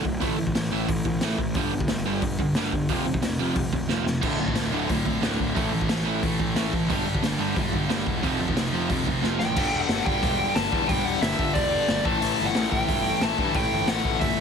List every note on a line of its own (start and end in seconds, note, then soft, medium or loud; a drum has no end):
0.04 0.21 D1 medium
0.04 0.19 D2 medium
0.04 0.19 A2 medium
0.04 kick medium
0.20 0.38 A1 medium
0.20 0.37 A2 medium
0.20 0.37 E3 medium
0.20 0.37 A3 medium
0.20 kick loud
0.20 open hi-hat medium
0.38 0.54 A1 medium
0.38 0.53 A2 medium
0.38 0.53 E3 medium
0.47 kick medium
0.55 0.71 A1 medium
0.55 0.70 A2 medium
0.55 0.70 E3 medium
0.55 snare loud
0.55 open hi-hat medium
0.71 0.88 A1 medium
0.71 0.87 A2 medium
0.71 0.88 E3 medium
0.71 0.88 A3 loud
0.88 1.04 A1 medium
0.88 1.03 A2 medium
0.88 1.04 E3 medium
0.88 kick loud
0.88 open hi-hat medium
1.05 1.21 A1 medium
1.05 1.21 A2 medium
1.05 1.21 E3 medium
1.05 kick medium
1.21 1.38 A1 medium
1.21 1.38 A2 loud
1.21 1.38 E3 loud
1.21 1.39 A3 loud
1.21 snare loud
1.21 open hi-hat medium
1.38 1.55 A1 medium
1.38 1.54 A2 medium
1.38 1.54 E3 medium
1.38 kick medium
1.54 1.71 G1 medium
1.54 1.71 G2 medium
1.54 1.72 D3 medium
1.54 1.72 G3 medium
1.54 kick loud
1.54 open hi-hat medium
1.73 1.89 G1 medium
1.73 1.88 G2 medium
1.73 1.88 D3 medium
1.80 kick medium
1.88 2.05 G1 medium
1.88 2.04 G2 medium
1.88 2.04 D3 medium
1.88 snare loud
1.88 open hi-hat medium
2.06 2.22 G1 medium
2.06 2.21 G2 medium
2.06 2.22 D3 medium
2.06 2.22 G3 loud
2.22 2.38 G1 medium
2.22 2.38 G2 medium
2.22 2.38 D3 medium
2.22 kick loud
2.22 open hi-hat medium
2.39 2.55 G1 medium
2.39 2.54 G2 medium
2.39 2.54 D3 medium
2.39 kick medium
2.55 2.72 G1 medium
2.55 2.72 G2 medium
2.55 2.72 D3 medium
2.55 2.73 G3 loud
2.55 snare loud
2.55 open hi-hat medium
2.72 2.88 G1 medium
2.72 2.89 G2 medium
2.72 2.89 D3 medium
2.72 kick medium
2.89 3.05 F1 medium
2.89 3.06 F2 medium
2.89 3.06 C3 medium
2.89 3.06 F3 medium
2.89 kick loud
2.89 open hi-hat medium
3.06 3.22 F1 medium
3.06 3.22 F2 medium
3.06 3.22 C3 medium
3.14 kick medium
3.23 3.39 F1 medium
3.23 3.39 F2 medium
3.23 3.39 C3 medium
3.23 snare loud
3.23 open hi-hat medium
3.40 3.55 F1 medium
3.40 3.56 F2 medium
3.40 3.56 C3 medium
3.40 3.57 F3 medium
3.56 3.72 F1 medium
3.56 3.72 F2 medium
3.56 kick loud
3.56 open hi-hat medium
3.60 3.73 C3 medium
3.73 3.89 F1 medium
3.73 3.89 F2 medium
3.73 3.89 C3 medium
3.73 kick medium
3.89 4.06 F1 medium
3.89 4.06 F2 medium
3.89 4.06 C3 medium
3.89 4.07 F3 medium
3.89 snare medium
4.06 4.23 F1 medium
4.06 4.22 F2 medium
4.06 4.22 C3 medium
4.06 snare medium
4.23 4.39 D1 medium
4.23 4.39 D2 medium
4.23 4.40 A2 medium
4.23 4.40 D3 medium
4.23 kick loud
4.23 crash loud
4.40 4.56 D1 medium
4.40 4.55 D2 medium
4.40 4.55 A2 medium
4.48 kick medium
4.55 4.72 D1 medium
4.55 4.72 D2 medium
4.55 4.72 A2 medium
4.55 snare loud
4.55 open hi-hat medium
4.73 4.89 D1 medium
4.73 4.89 D2 medium
4.73 4.89 A2 medium
4.73 4.89 D3 loud
4.89 5.05 D1 medium
4.89 5.05 D2 medium
4.89 5.05 A2 medium
4.89 5.56 D3 medium
4.89 kick loud
4.89 open hi-hat medium
5.06 5.22 D1 medium
5.06 5.22 D2 medium
5.06 5.22 A2 medium
5.06 kick medium
5.23 5.39 D1 medium
5.23 5.39 D2 medium
5.23 5.39 A2 medium
5.23 5.39 D3 loud
5.23 snare loud
5.23 open hi-hat medium
5.40 5.56 D1 medium
5.40 5.55 D2 medium
5.40 5.55 A2 medium
5.40 kick medium
5.56 5.72 A1 medium
5.56 5.72 A2 medium
5.56 5.72 E3 medium
5.56 5.72 A3 loud
5.56 kick loud
5.56 open hi-hat medium
5.73 5.89 A1 medium
5.73 5.88 A2 medium
5.73 5.88 E3 medium
5.81 kick medium
5.89 6.06 A1 medium
5.89 6.04 A2 medium
5.89 6.05 E3 medium
5.89 snare loud
5.89 open hi-hat medium
6.06 6.22 A1 medium
6.06 6.21 A2 medium
6.06 6.22 E3 loud
6.06 6.23 A3 medium
6.23 6.39 A1 medium
6.23 6.38 A2 medium
6.23 6.38 E3 medium
6.23 6.90 A3 medium
6.23 kick loud
6.23 open hi-hat medium
6.39 6.55 A1 medium
6.39 6.54 A2 medium
6.39 6.55 E3 medium
6.39 kick medium
6.56 6.72 A1 loud
6.56 6.72 A2 medium
6.56 6.72 E3 medium
6.56 6.73 A3 medium
6.56 snare loud
6.56 open hi-hat medium
6.73 6.89 A1 medium
6.73 6.88 A2 medium
6.73 6.88 E3 medium
6.73 kick medium
6.89 7.05 G1 medium
6.89 7.05 G2 medium
6.89 7.05 D3 loud
6.89 7.06 G3 medium
6.89 kick loud
6.89 open hi-hat medium
7.05 7.22 G1 medium
7.05 7.21 G2 medium
7.05 7.21 D3 medium
7.15 kick medium
7.22 7.39 G1 medium
7.22 7.38 G2 medium
7.22 7.38 D3 medium
7.22 snare loud
7.22 open hi-hat medium
7.39 7.56 G1 medium
7.39 7.55 G2 medium
7.39 7.55 D3 loud
7.39 7.56 G3 loud
7.56 7.72 G1 medium
7.56 7.71 G2 medium
7.56 7.71 D3 medium
7.56 8.23 G3 medium
7.56 kick loud
7.56 open hi-hat medium
7.72 7.88 G1 medium
7.72 7.87 G2 medium
7.72 7.88 D3 medium
7.72 kick medium
7.88 8.05 G1 medium
7.88 8.05 G2 medium
7.88 8.05 D3 medium
7.88 8.06 G3 medium
7.88 snare loud
7.88 open hi-hat medium
8.06 8.22 E1 medium
8.06 8.21 G2 medium
8.06 8.21 D3 medium
8.06 kick medium
8.23 8.39 F1 medium
8.23 8.39 F2 medium
8.23 8.39 C3 medium
8.23 8.39 F3 loud
8.23 kick loud
8.23 open hi-hat medium
8.39 8.55 F1 medium
8.39 8.55 F2 medium
8.39 8.55 C3 medium
8.48 kick medium
8.56 8.72 F1 medium
8.56 8.72 F2 medium
8.56 8.72 C3 medium
8.56 snare loud
8.56 open hi-hat medium
8.72 8.89 F1 medium
8.72 8.89 F2 medium
8.72 8.89 C3 loud
8.72 8.89 F3 loud
8.90 9.06 F1 medium
8.90 9.05 F2 medium
8.90 9.05 C3 medium
8.90 9.56 F3 medium
8.90 kick loud
8.90 open hi-hat medium
9.06 9.22 F1 medium
9.06 9.21 F2 medium
9.06 9.22 C3 medium
9.06 kick medium
9.22 9.39 F1 medium
9.22 9.38 F2 medium
9.22 9.39 C3 medium
9.22 9.39 F3 loud
9.22 snare medium
9.39 9.56 A1 medium
9.39 9.55 F2 medium
9.39 9.55 C3 medium
9.39 9.81 G5 medium
9.39 snare medium
9.56 9.67 G1 medium
9.56 9.89 G2 medium
9.56 9.89 D3 medium
9.56 9.91 G3 loud
9.56 kick loud
9.56 crash loud
9.73 9.83 E1 medium
9.81 10.05 F#5 loud
9.89 9.99 G1 medium
9.89 10.06 G2 medium
9.89 10.05 D3 medium
9.89 10.05 G3 medium
9.89 snare loud
9.89 open hi-hat medium
10.06 10.17 G1 medium
10.06 10.20 G2 medium
10.06 10.21 D3 medium
10.06 10.22 G3 medium
10.06 10.57 G5 loud
10.06 kick loud
10.22 10.43 E1 medium
10.22 10.54 G2 loud
10.22 10.55 D3 loud
10.22 10.55 G3 loud
10.22 kick loud
10.22 open hi-hat medium
10.55 10.66 G1 loud
10.55 10.72 G2 medium
10.55 10.71 D3 loud
10.55 10.70 G3 loud
10.55 10.90 A5 loud
10.55 snare loud
10.55 open hi-hat medium
10.71 10.83 E2 medium
10.71 10.87 G2 medium
10.71 10.88 D3 medium
10.71 10.88 G3 medium
10.71 kick medium
10.88 11.00 G1 medium
10.88 11.20 G2 loud
10.88 11.21 D3 loud
10.88 11.22 G3 loud
10.88 11.05 G5 loud
10.88 kick loud
10.88 open hi-hat medium
11.05 11.16 E1 medium
11.05 11.22 F#5 medium
11.21 11.32 G1 medium
11.21 11.39 G2 medium
11.21 11.38 D3 loud
11.21 11.37 G3 medium
11.21 11.56 E5 medium
11.21 snare loud
11.21 open hi-hat medium
11.38 11.49 G1 medium
11.38 11.54 G2 medium
11.38 11.55 D3 medium
11.38 11.56 G3 loud
11.38 kick medium
11.54 11.76 E1 medium
11.54 11.87 G2 loud
11.54 11.88 D3 loud
11.54 11.89 G3 loud
11.54 12.06 D5 loud
11.54 kick loud
11.54 open hi-hat medium
11.88 11.99 G1 loud
11.88 12.04 G2 medium
11.88 12.05 D3 medium
11.88 12.05 G3 loud
11.88 snare loud
11.88 open hi-hat medium
12.04 12.16 A1 loud
12.04 12.23 A2 loud
12.04 12.22 E3 loud
12.04 12.21 A3 loud
12.04 12.44 A5 loud
12.04 kick loud
12.22 12.33 A1 loud
12.22 12.56 A2 medium
12.22 12.56 E3 loud
12.22 12.55 A3 loud
12.22 open hi-hat medium
12.39 12.49 G1 medium
12.46 12.70 F#5 loud
12.55 12.66 A1 medium
12.55 12.71 A2 medium
12.55 12.72 E3 medium
12.55 12.73 A3 medium
12.55 snare loud
12.55 open hi-hat medium
12.71 12.82 A1 medium
12.71 12.88 A2 medium
12.71 12.88 E3 medium
12.71 12.86 A3 medium
12.71 13.23 G5 loud
12.71 kick medium
12.88 13.09 G1 loud
12.88 13.22 A2 medium
12.88 13.21 E3 loud
12.88 13.19 A3 loud
12.88 kick loud
12.88 open hi-hat medium
13.21 13.32 A1 loud
13.21 13.36 A2 medium
13.21 13.37 E3 medium
13.21 13.38 A3 loud
13.21 13.56 A5 loud
13.21 snare loud
13.21 open hi-hat medium
13.37 13.48 G2 loud
13.37 13.56 A2 loud
13.37 13.55 E3 medium
13.37 13.54 A3 medium
13.37 kick medium
13.54 13.65 A1 medium
13.54 13.89 A2 medium
13.54 13.88 E3 loud
13.54 13.87 A3 loud
13.54 13.88 G5 loud
13.54 kick loud
13.54 open hi-hat medium
13.72 13.82 G1 medium
13.88 13.99 A1 medium
13.88 14.03 A2 medium
13.88 14.04 E3 medium
13.88 14.05 A3 loud
13.88 14.20 F#5 loud
13.88 snare loud
13.88 open hi-hat medium
14.04 14.15 A1 medium
14.04 14.21 A2 loud
14.04 14.21 E3 medium
14.04 14.20 A3 loud
14.04 kick loud
14.21 14.40 G1 medium
14.21 14.40 A2 medium
14.21 14.40 E3 loud
14.21 14.40 A3 loud
14.21 14.40 E5 medium
14.21 kick loud
14.21 open hi-hat medium